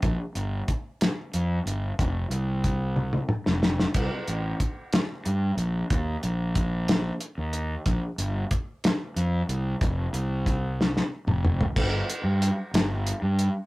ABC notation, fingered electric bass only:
X:1
M:6/8
L:1/16
Q:3/8=61
K:F
V:1 name="Fingered electric bass" clef=bass
B,,, z G,,,2 z4 F,,2 G,,,2 | F,,,2 C,,6- C,, F,,,3 | C,, z A,,,2 z4 G,,2 B,,,2 | _E,,2 B,,,6- B,,, E,,3 |
B,,, z G,,,2 z4 F,,2 C,,2 | F,,,2 C,,6- C,, F,,,3 | G,,,2 z G,,2 z G,,,3 G,,2 z |]